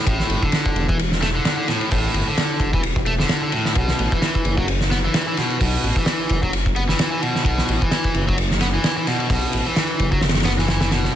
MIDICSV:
0, 0, Header, 1, 4, 480
1, 0, Start_track
1, 0, Key_signature, 2, "minor"
1, 0, Tempo, 461538
1, 70, Time_signature, 4, 2, 24, 8
1, 11600, End_track
2, 0, Start_track
2, 0, Title_t, "Overdriven electric guitar"
2, 0, Program_c, 0, 29
2, 69, Note_on_c, 0, 45, 97
2, 430, Note_off_c, 0, 45, 0
2, 446, Note_on_c, 0, 50, 74
2, 912, Note_off_c, 0, 50, 0
2, 927, Note_on_c, 0, 52, 81
2, 1004, Note_off_c, 0, 52, 0
2, 1268, Note_on_c, 0, 57, 98
2, 1329, Note_off_c, 0, 57, 0
2, 1407, Note_on_c, 0, 50, 74
2, 1626, Note_off_c, 0, 50, 0
2, 1639, Note_on_c, 0, 50, 75
2, 1737, Note_off_c, 0, 50, 0
2, 1745, Note_on_c, 0, 45, 75
2, 1977, Note_off_c, 0, 45, 0
2, 1991, Note_on_c, 0, 45, 97
2, 2351, Note_off_c, 0, 45, 0
2, 2367, Note_on_c, 0, 50, 73
2, 2832, Note_off_c, 0, 50, 0
2, 2845, Note_on_c, 0, 52, 74
2, 2923, Note_off_c, 0, 52, 0
2, 3189, Note_on_c, 0, 57, 92
2, 3249, Note_off_c, 0, 57, 0
2, 3326, Note_on_c, 0, 50, 79
2, 3548, Note_off_c, 0, 50, 0
2, 3561, Note_on_c, 0, 50, 74
2, 3658, Note_off_c, 0, 50, 0
2, 3670, Note_on_c, 0, 45, 76
2, 3899, Note_off_c, 0, 45, 0
2, 3911, Note_on_c, 0, 47, 103
2, 4272, Note_off_c, 0, 47, 0
2, 4284, Note_on_c, 0, 52, 73
2, 4751, Note_off_c, 0, 52, 0
2, 4764, Note_on_c, 0, 54, 75
2, 4842, Note_off_c, 0, 54, 0
2, 5110, Note_on_c, 0, 59, 103
2, 5170, Note_off_c, 0, 59, 0
2, 5247, Note_on_c, 0, 52, 74
2, 5472, Note_off_c, 0, 52, 0
2, 5487, Note_on_c, 0, 52, 76
2, 5581, Note_off_c, 0, 52, 0
2, 5594, Note_on_c, 0, 47, 77
2, 5819, Note_off_c, 0, 47, 0
2, 5832, Note_on_c, 0, 47, 95
2, 6192, Note_off_c, 0, 47, 0
2, 6207, Note_on_c, 0, 52, 75
2, 6672, Note_off_c, 0, 52, 0
2, 6687, Note_on_c, 0, 54, 76
2, 6764, Note_off_c, 0, 54, 0
2, 7032, Note_on_c, 0, 59, 100
2, 7091, Note_off_c, 0, 59, 0
2, 7165, Note_on_c, 0, 52, 77
2, 7391, Note_off_c, 0, 52, 0
2, 7402, Note_on_c, 0, 52, 74
2, 7499, Note_off_c, 0, 52, 0
2, 7508, Note_on_c, 0, 47, 82
2, 7739, Note_off_c, 0, 47, 0
2, 7749, Note_on_c, 0, 47, 98
2, 8110, Note_off_c, 0, 47, 0
2, 8124, Note_on_c, 0, 52, 72
2, 8591, Note_off_c, 0, 52, 0
2, 8607, Note_on_c, 0, 54, 78
2, 8684, Note_off_c, 0, 54, 0
2, 8956, Note_on_c, 0, 59, 100
2, 9013, Note_off_c, 0, 59, 0
2, 9088, Note_on_c, 0, 52, 78
2, 9313, Note_off_c, 0, 52, 0
2, 9328, Note_on_c, 0, 52, 78
2, 9421, Note_off_c, 0, 52, 0
2, 9433, Note_on_c, 0, 47, 79
2, 9661, Note_off_c, 0, 47, 0
2, 9673, Note_on_c, 0, 47, 96
2, 10032, Note_off_c, 0, 47, 0
2, 10047, Note_on_c, 0, 52, 77
2, 10512, Note_off_c, 0, 52, 0
2, 10526, Note_on_c, 0, 54, 74
2, 10604, Note_off_c, 0, 54, 0
2, 10868, Note_on_c, 0, 59, 101
2, 10929, Note_off_c, 0, 59, 0
2, 11010, Note_on_c, 0, 52, 72
2, 11234, Note_off_c, 0, 52, 0
2, 11246, Note_on_c, 0, 52, 72
2, 11340, Note_off_c, 0, 52, 0
2, 11351, Note_on_c, 0, 47, 77
2, 11580, Note_off_c, 0, 47, 0
2, 11600, End_track
3, 0, Start_track
3, 0, Title_t, "Detuned saw bass"
3, 0, Program_c, 1, 39
3, 68, Note_on_c, 1, 33, 98
3, 235, Note_off_c, 1, 33, 0
3, 304, Note_on_c, 1, 31, 92
3, 394, Note_off_c, 1, 31, 0
3, 785, Note_on_c, 1, 28, 94
3, 1448, Note_off_c, 1, 28, 0
3, 1996, Note_on_c, 1, 33, 98
3, 2159, Note_off_c, 1, 33, 0
3, 2224, Note_on_c, 1, 31, 97
3, 2315, Note_off_c, 1, 31, 0
3, 2700, Note_on_c, 1, 28, 93
3, 3366, Note_off_c, 1, 28, 0
3, 3908, Note_on_c, 1, 35, 98
3, 4075, Note_off_c, 1, 35, 0
3, 4148, Note_on_c, 1, 33, 99
3, 4237, Note_off_c, 1, 33, 0
3, 4626, Note_on_c, 1, 30, 96
3, 5289, Note_off_c, 1, 30, 0
3, 5831, Note_on_c, 1, 35, 97
3, 5996, Note_off_c, 1, 35, 0
3, 6068, Note_on_c, 1, 33, 97
3, 6156, Note_off_c, 1, 33, 0
3, 6554, Note_on_c, 1, 30, 96
3, 7213, Note_off_c, 1, 30, 0
3, 7744, Note_on_c, 1, 35, 94
3, 7913, Note_off_c, 1, 35, 0
3, 7995, Note_on_c, 1, 33, 99
3, 8080, Note_off_c, 1, 33, 0
3, 8471, Note_on_c, 1, 30, 98
3, 9131, Note_off_c, 1, 30, 0
3, 9670, Note_on_c, 1, 35, 97
3, 9836, Note_off_c, 1, 35, 0
3, 9913, Note_on_c, 1, 33, 95
3, 9999, Note_off_c, 1, 33, 0
3, 10398, Note_on_c, 1, 30, 96
3, 10867, Note_off_c, 1, 30, 0
3, 10873, Note_on_c, 1, 30, 91
3, 11532, Note_off_c, 1, 30, 0
3, 11600, End_track
4, 0, Start_track
4, 0, Title_t, "Drums"
4, 69, Note_on_c, 9, 36, 104
4, 72, Note_on_c, 9, 51, 94
4, 173, Note_off_c, 9, 36, 0
4, 176, Note_off_c, 9, 51, 0
4, 203, Note_on_c, 9, 38, 54
4, 307, Note_off_c, 9, 38, 0
4, 308, Note_on_c, 9, 51, 70
4, 412, Note_off_c, 9, 51, 0
4, 442, Note_on_c, 9, 36, 89
4, 542, Note_on_c, 9, 51, 83
4, 546, Note_off_c, 9, 36, 0
4, 549, Note_on_c, 9, 38, 97
4, 646, Note_off_c, 9, 51, 0
4, 653, Note_off_c, 9, 38, 0
4, 683, Note_on_c, 9, 36, 94
4, 787, Note_off_c, 9, 36, 0
4, 790, Note_on_c, 9, 51, 67
4, 894, Note_off_c, 9, 51, 0
4, 927, Note_on_c, 9, 36, 92
4, 1031, Note_off_c, 9, 36, 0
4, 1033, Note_on_c, 9, 51, 89
4, 1137, Note_off_c, 9, 51, 0
4, 1162, Note_on_c, 9, 38, 47
4, 1266, Note_off_c, 9, 38, 0
4, 1272, Note_on_c, 9, 38, 56
4, 1272, Note_on_c, 9, 51, 71
4, 1376, Note_off_c, 9, 38, 0
4, 1376, Note_off_c, 9, 51, 0
4, 1510, Note_on_c, 9, 51, 88
4, 1511, Note_on_c, 9, 38, 119
4, 1614, Note_off_c, 9, 51, 0
4, 1615, Note_off_c, 9, 38, 0
4, 1746, Note_on_c, 9, 51, 74
4, 1750, Note_on_c, 9, 38, 50
4, 1850, Note_off_c, 9, 51, 0
4, 1854, Note_off_c, 9, 38, 0
4, 1882, Note_on_c, 9, 51, 43
4, 1986, Note_off_c, 9, 51, 0
4, 1988, Note_on_c, 9, 46, 71
4, 1994, Note_on_c, 9, 36, 110
4, 2092, Note_off_c, 9, 46, 0
4, 2098, Note_off_c, 9, 36, 0
4, 2229, Note_on_c, 9, 51, 66
4, 2333, Note_off_c, 9, 51, 0
4, 2471, Note_on_c, 9, 38, 101
4, 2472, Note_on_c, 9, 51, 92
4, 2575, Note_off_c, 9, 38, 0
4, 2576, Note_off_c, 9, 51, 0
4, 2701, Note_on_c, 9, 36, 97
4, 2711, Note_on_c, 9, 51, 70
4, 2805, Note_off_c, 9, 36, 0
4, 2815, Note_off_c, 9, 51, 0
4, 2843, Note_on_c, 9, 36, 100
4, 2947, Note_off_c, 9, 36, 0
4, 2947, Note_on_c, 9, 51, 87
4, 3051, Note_off_c, 9, 51, 0
4, 3079, Note_on_c, 9, 36, 104
4, 3183, Note_off_c, 9, 36, 0
4, 3183, Note_on_c, 9, 51, 68
4, 3287, Note_off_c, 9, 51, 0
4, 3321, Note_on_c, 9, 38, 62
4, 3424, Note_off_c, 9, 38, 0
4, 3424, Note_on_c, 9, 38, 111
4, 3425, Note_on_c, 9, 51, 86
4, 3528, Note_off_c, 9, 38, 0
4, 3529, Note_off_c, 9, 51, 0
4, 3662, Note_on_c, 9, 51, 69
4, 3766, Note_off_c, 9, 51, 0
4, 3799, Note_on_c, 9, 38, 51
4, 3903, Note_off_c, 9, 38, 0
4, 3903, Note_on_c, 9, 51, 81
4, 3909, Note_on_c, 9, 36, 110
4, 4007, Note_off_c, 9, 51, 0
4, 4013, Note_off_c, 9, 36, 0
4, 4035, Note_on_c, 9, 38, 63
4, 4139, Note_off_c, 9, 38, 0
4, 4148, Note_on_c, 9, 51, 72
4, 4252, Note_off_c, 9, 51, 0
4, 4286, Note_on_c, 9, 36, 91
4, 4388, Note_on_c, 9, 38, 113
4, 4390, Note_off_c, 9, 36, 0
4, 4394, Note_on_c, 9, 51, 85
4, 4492, Note_off_c, 9, 38, 0
4, 4498, Note_off_c, 9, 51, 0
4, 4526, Note_on_c, 9, 36, 94
4, 4626, Note_on_c, 9, 51, 70
4, 4630, Note_off_c, 9, 36, 0
4, 4730, Note_off_c, 9, 51, 0
4, 4758, Note_on_c, 9, 36, 91
4, 4862, Note_off_c, 9, 36, 0
4, 4866, Note_on_c, 9, 51, 90
4, 4970, Note_off_c, 9, 51, 0
4, 5000, Note_on_c, 9, 38, 50
4, 5104, Note_off_c, 9, 38, 0
4, 5106, Note_on_c, 9, 38, 59
4, 5123, Note_on_c, 9, 51, 64
4, 5210, Note_off_c, 9, 38, 0
4, 5227, Note_off_c, 9, 51, 0
4, 5345, Note_on_c, 9, 51, 87
4, 5347, Note_on_c, 9, 38, 126
4, 5449, Note_off_c, 9, 51, 0
4, 5451, Note_off_c, 9, 38, 0
4, 5587, Note_on_c, 9, 51, 72
4, 5593, Note_on_c, 9, 38, 50
4, 5691, Note_off_c, 9, 51, 0
4, 5697, Note_off_c, 9, 38, 0
4, 5723, Note_on_c, 9, 51, 43
4, 5827, Note_off_c, 9, 51, 0
4, 5832, Note_on_c, 9, 36, 96
4, 5834, Note_on_c, 9, 46, 80
4, 5936, Note_off_c, 9, 36, 0
4, 5938, Note_off_c, 9, 46, 0
4, 6072, Note_on_c, 9, 51, 59
4, 6176, Note_off_c, 9, 51, 0
4, 6198, Note_on_c, 9, 36, 92
4, 6302, Note_off_c, 9, 36, 0
4, 6303, Note_on_c, 9, 38, 119
4, 6317, Note_on_c, 9, 51, 77
4, 6407, Note_off_c, 9, 38, 0
4, 6421, Note_off_c, 9, 51, 0
4, 6545, Note_on_c, 9, 51, 62
4, 6556, Note_on_c, 9, 36, 85
4, 6649, Note_off_c, 9, 51, 0
4, 6660, Note_off_c, 9, 36, 0
4, 6686, Note_on_c, 9, 36, 85
4, 6790, Note_off_c, 9, 36, 0
4, 6792, Note_on_c, 9, 51, 94
4, 6896, Note_off_c, 9, 51, 0
4, 6927, Note_on_c, 9, 36, 91
4, 7031, Note_off_c, 9, 36, 0
4, 7031, Note_on_c, 9, 51, 67
4, 7135, Note_off_c, 9, 51, 0
4, 7163, Note_on_c, 9, 38, 61
4, 7267, Note_off_c, 9, 38, 0
4, 7270, Note_on_c, 9, 51, 95
4, 7275, Note_on_c, 9, 38, 126
4, 7374, Note_off_c, 9, 51, 0
4, 7379, Note_off_c, 9, 38, 0
4, 7515, Note_on_c, 9, 51, 75
4, 7619, Note_off_c, 9, 51, 0
4, 7649, Note_on_c, 9, 38, 50
4, 7746, Note_on_c, 9, 36, 93
4, 7753, Note_off_c, 9, 38, 0
4, 7756, Note_on_c, 9, 51, 97
4, 7850, Note_off_c, 9, 36, 0
4, 7860, Note_off_c, 9, 51, 0
4, 7884, Note_on_c, 9, 38, 59
4, 7988, Note_off_c, 9, 38, 0
4, 7994, Note_on_c, 9, 51, 74
4, 8098, Note_off_c, 9, 51, 0
4, 8133, Note_on_c, 9, 36, 99
4, 8231, Note_on_c, 9, 38, 103
4, 8235, Note_on_c, 9, 51, 85
4, 8237, Note_off_c, 9, 36, 0
4, 8335, Note_off_c, 9, 38, 0
4, 8339, Note_off_c, 9, 51, 0
4, 8366, Note_on_c, 9, 36, 102
4, 8470, Note_off_c, 9, 36, 0
4, 8470, Note_on_c, 9, 51, 72
4, 8574, Note_off_c, 9, 51, 0
4, 8618, Note_on_c, 9, 36, 87
4, 8713, Note_on_c, 9, 51, 86
4, 8722, Note_off_c, 9, 36, 0
4, 8817, Note_off_c, 9, 51, 0
4, 8850, Note_on_c, 9, 38, 51
4, 8950, Note_on_c, 9, 51, 77
4, 8953, Note_off_c, 9, 38, 0
4, 8953, Note_on_c, 9, 38, 64
4, 9054, Note_off_c, 9, 51, 0
4, 9057, Note_off_c, 9, 38, 0
4, 9192, Note_on_c, 9, 51, 90
4, 9195, Note_on_c, 9, 38, 117
4, 9296, Note_off_c, 9, 51, 0
4, 9299, Note_off_c, 9, 38, 0
4, 9433, Note_on_c, 9, 51, 71
4, 9435, Note_on_c, 9, 38, 47
4, 9537, Note_off_c, 9, 51, 0
4, 9539, Note_off_c, 9, 38, 0
4, 9568, Note_on_c, 9, 51, 47
4, 9671, Note_on_c, 9, 36, 107
4, 9672, Note_off_c, 9, 51, 0
4, 9679, Note_on_c, 9, 46, 75
4, 9775, Note_off_c, 9, 36, 0
4, 9783, Note_off_c, 9, 46, 0
4, 9911, Note_on_c, 9, 51, 66
4, 10015, Note_off_c, 9, 51, 0
4, 10154, Note_on_c, 9, 38, 104
4, 10157, Note_on_c, 9, 51, 86
4, 10258, Note_off_c, 9, 38, 0
4, 10261, Note_off_c, 9, 51, 0
4, 10394, Note_on_c, 9, 51, 72
4, 10398, Note_on_c, 9, 36, 83
4, 10498, Note_off_c, 9, 51, 0
4, 10502, Note_off_c, 9, 36, 0
4, 10523, Note_on_c, 9, 36, 96
4, 10621, Note_on_c, 9, 38, 82
4, 10627, Note_off_c, 9, 36, 0
4, 10633, Note_on_c, 9, 51, 69
4, 10704, Note_off_c, 9, 38, 0
4, 10704, Note_off_c, 9, 51, 0
4, 10704, Note_on_c, 9, 38, 86
4, 10704, Note_on_c, 9, 51, 76
4, 10758, Note_off_c, 9, 38, 0
4, 10758, Note_on_c, 9, 38, 94
4, 10766, Note_off_c, 9, 51, 0
4, 10766, Note_on_c, 9, 51, 67
4, 10819, Note_off_c, 9, 51, 0
4, 10819, Note_on_c, 9, 51, 69
4, 10831, Note_off_c, 9, 38, 0
4, 10831, Note_on_c, 9, 38, 83
4, 10868, Note_off_c, 9, 38, 0
4, 10868, Note_on_c, 9, 38, 112
4, 10873, Note_off_c, 9, 51, 0
4, 10873, Note_on_c, 9, 51, 79
4, 10972, Note_off_c, 9, 38, 0
4, 10977, Note_off_c, 9, 51, 0
4, 11004, Note_on_c, 9, 38, 58
4, 11108, Note_off_c, 9, 38, 0
4, 11110, Note_on_c, 9, 38, 112
4, 11114, Note_on_c, 9, 51, 76
4, 11214, Note_off_c, 9, 38, 0
4, 11218, Note_off_c, 9, 51, 0
4, 11239, Note_on_c, 9, 38, 103
4, 11247, Note_on_c, 9, 51, 72
4, 11343, Note_off_c, 9, 38, 0
4, 11349, Note_on_c, 9, 38, 110
4, 11351, Note_off_c, 9, 51, 0
4, 11356, Note_on_c, 9, 51, 83
4, 11453, Note_off_c, 9, 38, 0
4, 11460, Note_off_c, 9, 51, 0
4, 11486, Note_on_c, 9, 38, 46
4, 11590, Note_off_c, 9, 38, 0
4, 11600, End_track
0, 0, End_of_file